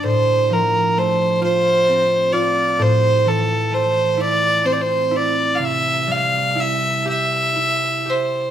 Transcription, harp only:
\new Staff \with { instrumentName = "Harp" } { \time 6/8 \key c \mixolydian \tempo 4. = 43 a,8 f8 a8 f'8 c'8 f'8 | a,8 e8 a8 e'8 c'8 e'8 | c8 g8 e'8 g'8 e'8 g'8 | }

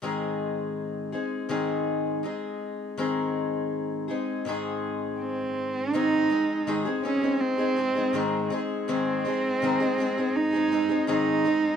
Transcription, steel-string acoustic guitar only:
\new Staff \with { instrumentName = "Steel-string acoustic guitar" } { \time 4/4 \key aes \major \tempo 4 = 81 <aes, ees aes c' ees' aes'>4. <aes c' ees' aes'>8 <aes, ees aes c' ees' aes'>4 <aes c' ees' aes'>4 | <aes, ees aes c' ees' aes'>4. <aes c' ees' aes'>8 <aes, ees aes c' ees' aes'>2 | <aes, ees aes c' ees' aes'>8 <aes c' ees' aes'>8 <aes, ees aes c' ees' aes'>16 <aes c' ees' aes'>16 <aes c' ees' aes'>16 <aes c' ees' aes'>8 <aes c' ees' aes'>16 <aes c' ees' aes'>16 <aes c' ees' aes'>16 <aes, ees aes c' ees' aes'>8 <aes c' ees' aes'>8 | <aes, ees aes c' ees' aes'>8 <aes c' ees' aes'>8 <aes, ees aes c' ees' aes'>16 <aes c' ees' aes'>16 <aes c' ees' aes'>16 <aes c' ees' aes'>8 <aes c' ees' aes'>16 <aes c' ees' aes'>16 <aes c' ees' aes'>16 <aes, ees aes c' ees' aes'>8 <aes c' ees' aes'>8 | }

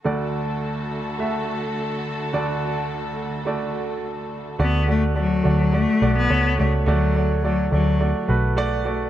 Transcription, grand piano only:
<<
  \new Staff \with { instrumentName = "Grand piano" } { \time 4/4 \key d \major \tempo 4 = 106 <a fis' d''>2 <a fis' e''>2 | <a fis' d''>2 <a fis' d''>2 | <a fis' d''>8 <a fis' d''>8 <a fis' d''>8 <a fis' d''>8 <a fis' d''>8 <a fis' d''>8 <a fis' cis''>8 <a fis' d''>8 | <a fis' d''>8 <a fis' d''>8 <a fis' d''>8 <a fis' d''>8 <a fis' d''>8 <a fis' b'>8 <a fis' d''>8 <a fis' d''>8 | }
  \new Staff \with { instrumentName = "Grand piano" } { \clef bass \time 4/4 \key d \major <d, d>1 | <d, d>1 | d4. r2 r8 | d4. r2 r8 | }
>>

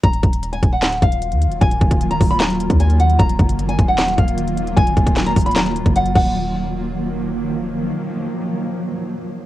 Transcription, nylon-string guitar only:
\new Staff \with { instrumentName = "Nylon-string guitar" } { \time 4/4 \key ees \minor \tempo 4 = 152 bes''4~ bes''16 aes''8 ges''8. f''4. | aes''4~ aes''16 bes''8 ces'''16 bes''4 aes''8 ges''8 | bes''4~ bes''16 aes''8 ges''8. f''4. | aes''4~ aes''16 bes''8 ces'''16 bes''4 ges''8 ges''8~ |
ges''2. r4 | r1 | }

